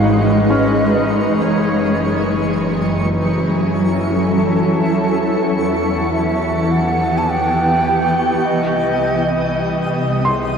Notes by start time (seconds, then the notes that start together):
Already playing: G#1 E3 G#3 C#4 D#4 F#4 A#4 B4 F5 C#6
0.24 D#5
0.50 C#4
1.36 F#1 F#3 C#5
1.60 E4
2.13 C#4
2.92 A4
4.88 E2 E3
5.34 B3
5.66 G4
5.99 F#5
6.11 E5
6.71 F#5
7.18 A5
7.30 G5
8.40 C2 C3 D#6
8.45 D#5
8.90 G3
10.25 C6